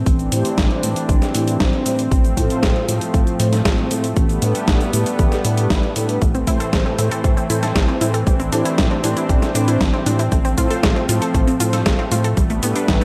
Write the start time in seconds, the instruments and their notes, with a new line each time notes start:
Already playing: analog synth pad C4
0.06 analog synth bass A1, analog synth pad E3 D4, kick, closed hi-hat, cabasa
0.19 closed hi-hat, cabasa
0.32 analog synth bass A2, analog polysynth A3 D4 E4 G4 C5, closed hi-hat, cabasa
0.45 closed hi-hat, cabasa
0.58 analog synth bass A1, kick, snare, closed hi-hat, cabasa
0.71 closed hi-hat
0.83 analog synth bass A2, analog polysynth A3 D4 E4 G4 C5, closed hi-hat, cabasa
0.96 closed hi-hat, cabasa
1.09 analog synth bass A1, kick, closed hi-hat, cabasa
1.22 snare, closed hi-hat, cabasa
1.35 analog synth bass A2, analog polysynth A3 D4 E4 G4 C5, closed hi-hat, cabasa
1.48 closed hi-hat, cabasa
1.60 analog synth bass A1, kick, snare, closed hi-hat, cabasa
1.73 closed hi-hat
1.86 analog synth bass A2, analog polysynth D4 E4 G4 C5, closed hi-hat, cabasa
1.99 closed hi-hat, cabasa
2.11 analog synth bass A1, analog synth pad F3 A3, kick, closed hi-hat, cabasa
2.24 closed hi-hat, cabasa
2.37 analog synth bass A2, analog polysynth A2 C4 F4 A4 C5, kick, closed hi-hat, cabasa
2.50 closed hi-hat, cabasa
2.63 analog synth bass A1, kick, snare, closed hi-hat, cabasa
2.76 closed hi-hat
2.88 analog polysynth A2 C4 F4 A4 C5, analog synth bass A2, closed hi-hat, cabasa
3.01 closed hi-hat, cabasa
3.14 analog synth bass A1, kick, closed hi-hat, cabasa
3.27 closed hi-hat, cabasa
3.40 analog synth bass A2, analog polysynth A2 C4 F4 A4 C5, closed hi-hat, cabasa
3.53 snare, closed hi-hat, cabasa
3.65 analog synth bass A1, kick, snare, closed hi-hat, cabasa
3.78 closed hi-hat
3.91 analog synth bass A2, analog polysynth C4 F4 A4 C5, closed hi-hat, cabasa
4.04 closed hi-hat, cabasa
4.16 analog synth bass A1, analog synth pad G3 B3, kick, closed hi-hat, cabasa
4.29 closed hi-hat, cabasa
4.42 analog synth bass A2, analog polysynth A3 D4 G4 A4 B4, closed hi-hat, cabasa
4.55 closed hi-hat, cabasa
4.68 analog synth bass A1, kick, snare, closed hi-hat, cabasa
4.80 closed hi-hat, cabasa
4.93 analog synth bass A2, analog polysynth A3 D4 G4 A4 B4, closed hi-hat, cabasa
5.06 closed hi-hat, cabasa
5.19 analog synth bass A1, kick, closed hi-hat, cabasa
5.32 snare, closed hi-hat, cabasa
5.45 analog synth bass A2, analog polysynth A3 D4 G4 A4 B4, closed hi-hat, cabasa
5.58 closed hi-hat, cabasa
5.70 analog synth bass A1, kick, snare, closed hi-hat, cabasa
5.83 closed hi-hat
5.96 analog synth bass A2, analog polysynth D4 G4 A4 B4, closed hi-hat, cabasa
6.09 closed hi-hat, cabasa
6.22 analog synth bass A1, analog synth pad E3 A3 C4, synth arpeggio sound A3, kick, closed hi-hat, cabasa
6.35 synth arpeggio sound C4, closed hi-hat, cabasa
6.47 analog synth bass A2, analog polysynth A2 C4 E4 A4 C5, synth arpeggio sound E4, kick, closed hi-hat, cabasa
6.60 synth arpeggio sound A4, closed hi-hat, cabasa
6.73 analog synth bass A1, synth arpeggio sound A3, kick, snare, closed hi-hat, cabasa
6.86 synth arpeggio sound C4, closed hi-hat
6.99 analog synth bass A2, analog polysynth A2 C4 E4 A4 C5, synth arpeggio sound E4, closed hi-hat, cabasa
7.11 synth arpeggio sound A4, closed hi-hat, cabasa
7.24 analog synth bass A1, synth arpeggio sound A3, kick, closed hi-hat, cabasa
7.37 synth arpeggio sound C4, closed hi-hat, cabasa
7.50 analog synth bass A2, analog polysynth A2 C4 E4 A4 C5, synth arpeggio sound E4, closed hi-hat, cabasa
7.63 synth arpeggio sound A4, snare, closed hi-hat, cabasa
7.76 analog synth bass A1, synth arpeggio sound A3, kick, snare, closed hi-hat, cabasa
7.88 synth arpeggio sound C4, closed hi-hat
8.01 analog polysynth A2 C4 E4 A4 C5, analog synth bass A2, synth arpeggio sound E4, closed hi-hat, cabasa
8.14 synth arpeggio sound A4, closed hi-hat, cabasa
8.27 analog synth bass A1, synth arpeggio sound G3, analog synth pad D4, kick, closed hi-hat, cabasa
8.40 synth arpeggio sound C4, closed hi-hat, cabasa
8.52 analog synth bass A2, analog polysynth A3 D4 E4 G4 C5, synth arpeggio sound D4, closed hi-hat, cabasa
8.65 synth arpeggio sound E4, closed hi-hat, cabasa
8.78 analog synth bass A1, synth arpeggio sound G3, kick, snare, closed hi-hat, cabasa
8.91 synth arpeggio sound C4, closed hi-hat
9.04 analog synth bass A2, analog polysynth A3 D4 E4 G4 C5, synth arpeggio sound D4, closed hi-hat, cabasa
9.17 synth arpeggio sound E4, closed hi-hat, cabasa
9.29 analog synth bass A1, synth arpeggio sound G3, kick, closed hi-hat, cabasa
9.42 synth arpeggio sound C4, snare, closed hi-hat, cabasa
9.55 analog synth bass A2, analog polysynth A3 D4 E4 G4 C5, synth arpeggio sound D4, closed hi-hat, cabasa
9.68 synth arpeggio sound E4, closed hi-hat, cabasa
9.81 analog synth bass A1, synth arpeggio sound G3, kick, snare, closed hi-hat, cabasa
9.93 synth arpeggio sound C4, closed hi-hat
10.06 analog synth bass A2, synth arpeggio sound D4, analog polysynth D4 E4 G4 C5, closed hi-hat, cabasa
10.19 synth arpeggio sound E4, closed hi-hat, cabasa
10.32 analog synth bass A1, analog synth pad F3 A3, synth arpeggio sound A3, kick, closed hi-hat, cabasa
10.45 synth arpeggio sound C4, closed hi-hat, cabasa
10.58 analog synth bass A2, analog polysynth A2 C4 F4 A4 C5, synth arpeggio sound F4, kick, closed hi-hat, cabasa
10.70 synth arpeggio sound A4, closed hi-hat, cabasa
10.83 analog synth bass A1, synth arpeggio sound A3, kick, snare, closed hi-hat, cabasa
10.96 synth arpeggio sound C4, closed hi-hat
11.09 analog synth bass A2, analog polysynth A2 C4 F4 A4 C5, synth arpeggio sound F4, closed hi-hat, cabasa
11.22 synth arpeggio sound A4, closed hi-hat, cabasa
11.35 analog synth bass A1, synth arpeggio sound A3, kick, closed hi-hat, cabasa
11.47 synth arpeggio sound C4, closed hi-hat, cabasa
11.60 analog synth bass A2, analog polysynth A2 C4 F4 A4 C5, synth arpeggio sound F4, closed hi-hat, cabasa
11.73 synth arpeggio sound A4, snare, closed hi-hat, cabasa
11.86 analog synth bass A1, synth arpeggio sound A3, kick, snare, closed hi-hat, cabasa
11.99 synth arpeggio sound C4, closed hi-hat
12.12 analog synth bass A2, analog polysynth C4 F4 A4 C5, synth arpeggio sound F4, closed hi-hat, cabasa
12.24 synth arpeggio sound A4, closed hi-hat, cabasa
12.37 analog synth bass A1, synth arpeggio sound G3, analog synth pad G3 B3, kick, closed hi-hat, cabasa
12.50 synth arpeggio sound A3, closed hi-hat, cabasa
12.63 analog synth bass A2, analog polysynth A3 D4 G4 A4 B4, synth arpeggio sound B3, closed hi-hat, cabasa
12.76 synth arpeggio sound D4, closed hi-hat, cabasa
12.88 analog synth bass A1, synth arpeggio sound G3, kick, snare, closed hi-hat, cabasa